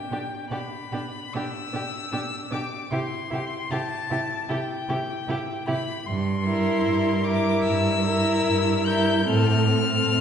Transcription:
Already playing: violin G5
0.10 cello B2, viola D4, violin G4
0.49 cello B2, viola D4, violin G4 B5
0.92 cello B2, viola D4, violin G4
1.33 cello B2, viola D4, violin G4 E6
1.73 cello B2, viola D4, violin G4
2.12 cello B2, viola D4, violin G4
2.51 cello B2, viola D4, violin G4 D6
2.90 cello C3, viola E4, violin G4 C6
3.30 cello C3, viola E4, violin G4
3.71 cello C3, viola E4, violin G4 A5
4.10 cello C3, viola E4, violin G4
4.48 cello C3, viola E4, violin G4 G5
4.89 cello C3, viola E4, violin G4
5.28 cello C3, viola E4, violin G4
5.67 cello C3, viola E4, violin G4 B5
6.06 cello G2, violin C6
6.45 viola E4, violin A#4
6.85 cello G2
7.23 viola E4, violin A#4 D6
7.63 cello G2, violin E6
8.05 viola E4, violin A#4
8.45 cello G2
8.86 viola E4, violin A#4 G6
9.26 cello A2, viola C4, violin A4 F6
9.68 viola C4, violin A4
10.07 cello A2

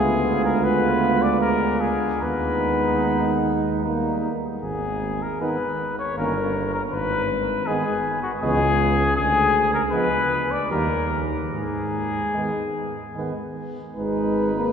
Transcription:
Already playing: tuba D2, trombone G#3, french horn B3, flugelhorn F4, trumpet G#4
0.45 trumpet A#4
0.64 trombone G#3, french horn B3, flugelhorn F4, trumpet B4
1.22 trumpet D5
1.40 trumpet A#4
1.81 trumpet G#4
2.22 tuba D#2, trombone G#3, french horn B3, flugelhorn D#4, trumpet B4
3.83 trombone G3, french horn A#3, flugelhorn D#4
4.62 tuba G#1, trumpet G#4
5.23 trumpet A#4
5.41 trombone D#3, french horn B3, flugelhorn D#4, trumpet B4
5.99 trumpet C#5
6.17 tuba G1, trombone D#3, french horn A#3, flugelhorn C#4, trumpet A#4
6.74 trumpet A#4
6.92 tuba G#1, trumpet B4
7.67 trombone D#3, french horn G#3, flugelhorn B3, trumpet G#4
8.23 trumpet F#4
8.41 tuba C#2, trombone E3, french horn G#3, flugelhorn B3, trumpet G#4
9.16 tuba D2, trumpet G#4
9.74 trumpet A#4
9.91 trombone F3, french horn G#3, flugelhorn B3, trumpet B4
10.51 trumpet D5
10.70 tuba D#2, trombone D#3, french horn G3, flugelhorn A#3, trumpet A#4
11.52 tuba G#2, trumpet G#4
12.34 trombone D#3, french horn G#3, flugelhorn B3
13.15 trombone D#3, french horn G#3, flugelhorn B3
13.96 tuba G#1, trombone G#3, flugelhorn D#4, french horn B4, trumpet B4
14.55 trombone A#3

